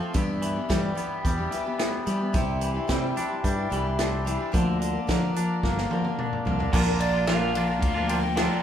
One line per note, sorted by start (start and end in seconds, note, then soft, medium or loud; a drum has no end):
0.00 0.15 F3 medium
0.00 0.15 A3 medium
0.00 0.15 C4 medium
0.00 0.14 C4 soft
0.00 0.15 F4 soft
0.00 0.12 A4 medium
0.00 0.14 A4 medium
0.00 0.13 C5 medium
0.00 0.12 F5 medium
0.00 0.12 C6 medium
0.13 0.55 G2 medium
0.13 0.58 G2 loud
0.13 1.52 G2 medium
0.13 0.56 E3 medium
0.13 0.56 G3 medium
0.13 0.55 B3 medium
0.13 0.55 D4 medium
0.13 0.53 G4 medium
0.13 4.51 G4 medium
0.13 6.70 D5 medium
0.13 4.51 E5 medium
0.13 2.33 B5 medium
0.13 kick medium
0.13 closed hi-hat medium
0.42 1.50 E3 medium
0.42 closed hi-hat medium
0.54 0.68 G3 soft
0.54 0.69 B3 soft
0.54 0.69 D4 medium
0.54 0.69 G4 medium
0.69 0.97 G2 medium
0.69 0.97 E3 medium
0.69 1.23 G3 medium
0.69 0.94 G3 medium
0.69 0.91 G3 medium
0.69 0.95 B3 medium
0.69 0.96 D4 medium
0.69 0.97 G4 medium
0.69 kick medium
0.69 snare loud
0.69 closed hi-hat medium
0.95 1.37 G3 medium
0.95 1.38 B3 medium
0.95 1.77 B3 medium
0.95 1.37 D4 medium
0.95 1.36 G4 medium
0.95 closed hi-hat medium
1.25 1.46 E2 medium
1.25 2.34 G3 medium
1.25 kick medium
1.25 closed hi-hat medium
1.37 1.50 G3 soft
1.37 1.51 B3 soft
1.37 1.52 D4 soft
1.37 1.51 G4 medium
1.51 2.05 E3 medium
1.51 1.65 G3 medium
1.51 1.66 B3 medium
1.51 1.65 D4 medium
1.51 1.63 G4 medium
1.51 closed hi-hat medium
1.64 2.05 G3 soft
1.64 2.06 B3 medium
1.64 2.07 D4 soft
1.64 2.06 G4 medium
1.79 2.34 B3 medium
1.79 snare loud
1.79 closed hi-hat medium
2.06 2.34 E3 medium
2.06 2.20 G3 medium
2.06 2.36 G3 medium
2.06 2.20 B3 medium
2.06 2.19 D4 medium
2.06 2.18 G4 medium
2.06 closed hi-hat medium
2.19 2.32 G3 soft
2.19 2.33 B3 medium
2.19 2.33 D4 soft
2.19 2.33 G4 medium
2.33 2.78 C2 loud
2.33 2.75 C3 medium
2.33 3.71 C3 medium
2.33 2.75 G3 medium
2.33 2.75 D4 medium
2.33 2.74 E4 medium
2.33 2.73 G4 medium
2.33 4.52 C6 medium
2.33 kick loud
2.33 closed hi-hat medium
2.61 3.71 E3 medium
2.61 closed hi-hat medium
2.74 2.87 D4 soft
2.74 2.88 E4 medium
2.74 2.88 G4 medium
2.88 3.16 C3 medium
2.88 3.11 C3 medium
2.88 3.15 G3 medium
2.88 3.43 G3 medium
2.88 3.16 D4 medium
2.88 3.16 E4 medium
2.88 3.17 G4 medium
2.88 kick medium
2.88 snare medium
2.88 closed hi-hat medium
3.16 3.30 G3 medium
3.16 3.99 D4 medium
3.16 3.31 D4 medium
3.16 3.29 E4 medium
3.16 3.28 G4 medium
3.16 closed hi-hat medium
3.29 3.59 D4 soft
3.29 3.57 E4 soft
3.29 3.55 G4 soft
3.44 3.66 G2 loud
3.44 4.54 G3 medium
3.44 kick medium
3.44 closed hi-hat medium
3.56 3.70 D4 soft
3.56 3.71 E4 medium
3.56 3.71 G4 medium
3.70 4.36 C2 medium
3.70 4.26 E3 medium
3.70 3.85 G3 medium
3.70 3.85 D4 medium
3.70 3.85 E4 medium
3.70 3.83 G4 medium
3.70 closed hi-hat medium
3.84 4.25 D4 soft
3.84 4.26 E4 soft
3.84 4.26 G4 medium
3.99 5.36 D4 medium
3.99 snare loud
3.99 closed hi-hat medium
4.25 4.54 E3 medium
4.25 4.39 G3 medium
4.25 4.39 D4 medium
4.25 4.38 E4 medium
4.25 4.36 G4 medium
4.25 closed hi-hat medium
4.38 4.52 D4 soft
4.38 4.53 E4 soft
4.38 4.53 G4 medium
4.51 4.97 D2 medium
4.51 4.94 D3 medium
4.51 4.80 D3 medium
4.51 4.94 F3 medium
4.51 4.95 A#3 medium
4.51 4.94 D4 medium
4.51 4.92 A#4 medium
4.51 6.72 A#4 medium
4.51 6.72 F5 medium
4.51 6.72 D6 medium
4.51 kick loud
4.51 closed hi-hat medium
4.81 5.90 D3 medium
4.81 closed hi-hat medium
4.93 5.07 A#3 soft
4.93 5.08 D4 medium
4.93 5.08 A#4 medium
5.07 5.35 D3 medium
5.07 5.30 D3 medium
5.07 5.33 F3 medium
5.07 5.35 A#3 medium
5.07 5.63 A#3 medium
5.07 5.35 D4 medium
5.07 5.36 A#4 medium
5.07 kick medium
5.07 snare loud
5.07 closed hi-hat medium
5.34 5.77 F3 medium
5.34 5.77 A#3 medium
5.34 5.77 D4 medium
5.34 6.18 D4 medium
5.34 5.75 A#4 medium
5.34 closed hi-hat medium
5.63 5.85 G1 medium
5.63 6.72 A#3 medium
5.63 kick medium
5.63 snare medium
5.76 5.90 A#3 soft
5.76 5.91 D4 soft
5.76 5.91 A#4 medium
5.76 snare soft
5.90 6.45 D3 medium
5.90 6.04 F3 medium
5.90 6.05 A#3 medium
5.90 6.05 D4 medium
5.90 6.03 A#4 medium
5.90 high tom medium
6.04 6.45 A#3 soft
6.04 6.46 D4 soft
6.04 6.45 A#4 soft
6.04 high tom medium
6.19 6.73 D4 medium
6.19 mid tom medium
6.33 mid tom medium
6.45 6.67 C2 medium
6.45 6.72 D3 medium
6.45 6.59 F3 medium
6.45 6.60 A#3 medium
6.45 6.59 D4 medium
6.45 6.57 A#4 medium
6.45 floor tom medium
6.59 6.73 A#3 soft
6.59 6.73 D4 soft
6.59 6.73 A#4 medium
6.59 floor tom medium
6.72 7.82 A#1 loud
6.72 7.25 A#2 medium
6.72 6.87 A#2 medium
6.72 7.26 D3 medium
6.72 6.87 D3 medium
6.72 6.87 F3 loud
6.72 7.15 A#3 medium
6.72 6.87 A#3 medium
6.72 7.14 D4 loud
6.72 6.85 D4 medium
6.72 7.13 F4 loud
6.72 6.84 A#4 loud
6.72 kick loud
6.72 crash loud
6.86 7.27 F3 soft
6.86 7.27 A#3 medium
6.86 7.27 D4 medium
6.86 7.27 A#4 medium
7.00 7.29 D5 medium
7.00 ride medium
7.13 7.27 A#3 medium
7.13 7.27 D4 medium
7.13 7.29 F4 medium
7.27 7.82 A#2 loud
7.27 7.55 A#2 medium
7.27 7.53 D3 loud
7.27 7.55 D3 medium
7.27 7.53 F3 medium
7.27 7.54 A#3 loud
7.27 7.55 A#3 medium
7.27 7.56 D4 medium
7.27 7.55 D4 loud
7.27 7.56 F4 loud
7.27 7.56 A#4 medium
7.27 7.78 F5 loud
7.27 snare loud
7.27 ride medium
7.54 7.96 D3 medium
7.54 7.69 F3 medium
7.54 7.69 A#3 medium
7.54 7.67 D4 medium
7.54 7.69 D4 medium
7.54 7.67 F4 medium
7.54 7.67 A#4 medium
7.54 ride medium
7.67 7.96 A#3 medium
7.67 7.96 A#3 soft
7.67 7.94 D4 medium
7.67 7.95 D4 soft
7.67 7.94 F4 medium
7.67 7.94 A#4 soft
7.71 7.97 F3 soft
7.80 8.47 D2 medium
7.80 8.08 F5 loud
7.80 kick medium
7.80 ride medium
7.94 8.08 F3 soft
7.94 8.07 A#3 medium
7.94 8.09 A#3 soft
7.94 8.08 D4 medium
7.94 8.10 D4 medium
7.94 8.10 F4 medium
7.94 8.09 A#4 medium
8.07 8.22 D3 medium
8.07 8.23 F3 medium
8.07 8.22 A#3 medium
8.07 8.24 A#3 medium
8.07 8.22 D4 medium
8.07 8.24 D4 medium
8.07 8.22 F4 medium
8.07 8.63 G5 loud
8.07 ride medium
8.12 8.22 A#4 medium
8.23 8.37 F3 soft
8.23 8.37 A#3 soft
8.23 8.38 D4 soft
8.23 8.37 A#4 medium
8.23 muted clean electric guitar stroke soft
8.36 8.63 A#2 medium
8.36 8.62 D3 medium
8.36 8.63 D3 medium
8.36 8.63 F3 medium
8.36 8.63 A#3 medium
8.36 8.63 D4 loud
8.36 8.63 D4 medium
8.36 8.63 F4 loud
8.36 8.63 A#4 medium
8.36 snare loud
8.36 ride loud